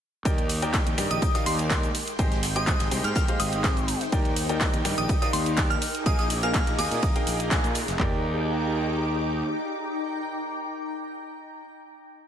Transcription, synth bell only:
0, 0, Header, 1, 2, 480
1, 0, Start_track
1, 0, Key_signature, -3, "major"
1, 0, Tempo, 483871
1, 252, Time_signature, 4, 2, 24, 8
1, 12179, End_track
2, 0, Start_track
2, 0, Title_t, "Synth bell"
2, 0, Program_c, 0, 98
2, 1099, Note_on_c, 0, 87, 91
2, 1277, Note_off_c, 0, 87, 0
2, 1338, Note_on_c, 0, 87, 85
2, 1428, Note_off_c, 0, 87, 0
2, 1451, Note_on_c, 0, 84, 92
2, 1637, Note_off_c, 0, 84, 0
2, 2538, Note_on_c, 0, 87, 94
2, 2716, Note_off_c, 0, 87, 0
2, 3021, Note_on_c, 0, 89, 89
2, 3092, Note_off_c, 0, 89, 0
2, 3132, Note_on_c, 0, 89, 77
2, 3214, Note_off_c, 0, 89, 0
2, 3370, Note_on_c, 0, 87, 92
2, 3851, Note_off_c, 0, 87, 0
2, 4938, Note_on_c, 0, 87, 94
2, 5117, Note_off_c, 0, 87, 0
2, 5178, Note_on_c, 0, 87, 89
2, 5268, Note_off_c, 0, 87, 0
2, 5289, Note_on_c, 0, 84, 94
2, 5476, Note_off_c, 0, 84, 0
2, 5658, Note_on_c, 0, 89, 92
2, 5822, Note_off_c, 0, 89, 0
2, 6010, Note_on_c, 0, 87, 90
2, 6093, Note_off_c, 0, 87, 0
2, 6139, Note_on_c, 0, 87, 78
2, 6211, Note_off_c, 0, 87, 0
2, 6380, Note_on_c, 0, 89, 90
2, 6557, Note_off_c, 0, 89, 0
2, 6732, Note_on_c, 0, 87, 96
2, 7100, Note_off_c, 0, 87, 0
2, 12179, End_track
0, 0, End_of_file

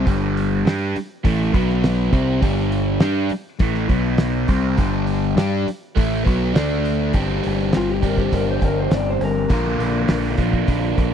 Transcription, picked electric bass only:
0, 0, Header, 1, 3, 480
1, 0, Start_track
1, 0, Tempo, 589391
1, 59, Time_signature, 4, 2, 24, 8
1, 9071, End_track
2, 0, Start_track
2, 0, Title_t, "Picked electric bass"
2, 0, Program_c, 0, 34
2, 58, Note_on_c, 0, 31, 98
2, 506, Note_off_c, 0, 31, 0
2, 531, Note_on_c, 0, 43, 97
2, 758, Note_off_c, 0, 43, 0
2, 1018, Note_on_c, 0, 33, 89
2, 1242, Note_off_c, 0, 33, 0
2, 1251, Note_on_c, 0, 35, 96
2, 1702, Note_off_c, 0, 35, 0
2, 1732, Note_on_c, 0, 36, 97
2, 1958, Note_off_c, 0, 36, 0
2, 1979, Note_on_c, 0, 31, 105
2, 2426, Note_off_c, 0, 31, 0
2, 2452, Note_on_c, 0, 43, 102
2, 2678, Note_off_c, 0, 43, 0
2, 2931, Note_on_c, 0, 33, 87
2, 3158, Note_off_c, 0, 33, 0
2, 3168, Note_on_c, 0, 35, 88
2, 3621, Note_off_c, 0, 35, 0
2, 3651, Note_on_c, 0, 36, 91
2, 3878, Note_off_c, 0, 36, 0
2, 3898, Note_on_c, 0, 31, 93
2, 4346, Note_off_c, 0, 31, 0
2, 4367, Note_on_c, 0, 43, 96
2, 4596, Note_off_c, 0, 43, 0
2, 4859, Note_on_c, 0, 33, 89
2, 5082, Note_off_c, 0, 33, 0
2, 5103, Note_on_c, 0, 35, 93
2, 5324, Note_off_c, 0, 35, 0
2, 5347, Note_on_c, 0, 38, 89
2, 5791, Note_off_c, 0, 38, 0
2, 5816, Note_on_c, 0, 31, 90
2, 6018, Note_off_c, 0, 31, 0
2, 6082, Note_on_c, 0, 31, 81
2, 6273, Note_off_c, 0, 31, 0
2, 6321, Note_on_c, 0, 31, 87
2, 6512, Note_off_c, 0, 31, 0
2, 6535, Note_on_c, 0, 31, 78
2, 6738, Note_off_c, 0, 31, 0
2, 6783, Note_on_c, 0, 31, 80
2, 6982, Note_off_c, 0, 31, 0
2, 7016, Note_on_c, 0, 31, 88
2, 7218, Note_off_c, 0, 31, 0
2, 7259, Note_on_c, 0, 31, 89
2, 7460, Note_off_c, 0, 31, 0
2, 7493, Note_on_c, 0, 31, 92
2, 7697, Note_off_c, 0, 31, 0
2, 7741, Note_on_c, 0, 34, 94
2, 7942, Note_off_c, 0, 34, 0
2, 7971, Note_on_c, 0, 34, 76
2, 8176, Note_off_c, 0, 34, 0
2, 8223, Note_on_c, 0, 34, 90
2, 8423, Note_off_c, 0, 34, 0
2, 8453, Note_on_c, 0, 34, 79
2, 8657, Note_off_c, 0, 34, 0
2, 8697, Note_on_c, 0, 34, 90
2, 8900, Note_off_c, 0, 34, 0
2, 8941, Note_on_c, 0, 34, 91
2, 9071, Note_off_c, 0, 34, 0
2, 9071, End_track
3, 0, Start_track
3, 0, Title_t, "Muted picked electric bass strokes"
3, 783, Note_on_c, 9, 29, 38
3, 864, Note_off_c, 9, 29, 0
3, 2693, Note_on_c, 9, 29, 41
3, 2775, Note_off_c, 9, 29, 0
3, 4622, Note_on_c, 9, 29, 39
3, 4704, Note_off_c, 9, 29, 0
3, 9071, End_track
0, 0, End_of_file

